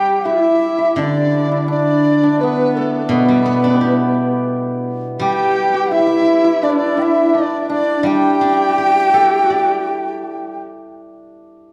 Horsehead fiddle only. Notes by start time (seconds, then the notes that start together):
Already playing: G4
0.25 E4
0.97 D4
1.70 D4
2.42 B3
3.11 B3
5.21 G4
5.91 E4
6.63 D4
6.98 E4
7.33 D4
8.05 G4